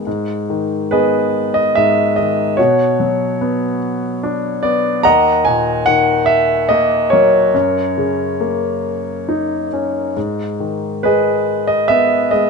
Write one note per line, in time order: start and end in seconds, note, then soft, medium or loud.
0.07 1.76 G#2 soft
0.50 2.14 D#3 soft
0.91 2.54 B3 soft
0.91 2.13 G#4 medium
0.91 1.57 B4 medium
0.91 1.53 D#5 soft
1.54 1.74 D#5 medium
1.75 2.56 G#2 soft
1.75 2.18 E5 medium
2.16 2.58 D#3 soft
2.16 2.59 D#5 medium
2.57 5.01 B2 medium
2.57 3.77 F#4 medium
2.57 3.35 C#5 medium
3.00 4.59 F#3 soft
3.41 4.62 B3 soft
4.23 5.03 D4 medium
4.63 5.03 B3 soft
4.63 5.05 D5 medium
5.03 7.51 D#2 medium
5.03 6.25 D#5 medium
5.03 5.84 F#5 medium
5.03 5.47 A#5 loud
5.45 7.09 A#2 soft
5.45 5.83 G#5 medium
5.86 7.51 D#3 medium
5.86 6.29 F#5 medium
6.26 6.70 E5 medium
6.69 7.52 A#3 medium
6.69 7.13 D#5 medium
7.10 7.54 F#3 soft
7.10 9.68 A#4 medium
7.10 9.67 C#5 medium
7.55 10.12 F#2 medium
7.98 9.69 C#3 soft
8.41 10.13 A#3 soft
9.29 10.15 D#4 soft
9.73 10.16 C#4 soft
10.17 12.50 G#2 soft
10.60 12.28 D#3 soft
11.03 12.31 G#3 soft
11.03 12.29 G#4 medium
11.03 11.65 B4 medium
11.03 11.66 D#5 medium
11.67 11.88 D#5 medium
11.88 12.50 B3 medium
11.88 12.33 E5 medium
12.31 12.50 G#3 soft
12.31 12.50 D#5 medium